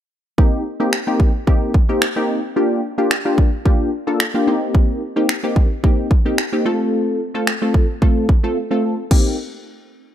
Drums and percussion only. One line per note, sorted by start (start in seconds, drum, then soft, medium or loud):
0.38 kick loud
0.93 finger snap loud
1.20 kick medium
1.47 kick medium
1.74 kick medium
2.02 finger snap loud
3.11 finger snap loud
3.38 kick loud
3.66 kick medium
4.20 finger snap loud
4.75 kick loud
5.29 finger snap loud
5.56 kick loud
5.84 kick medium
6.11 kick medium
6.38 finger snap loud
7.47 finger snap loud
7.74 kick medium
8.02 kick medium
8.29 kick medium
9.11 kick loud
9.11 crash medium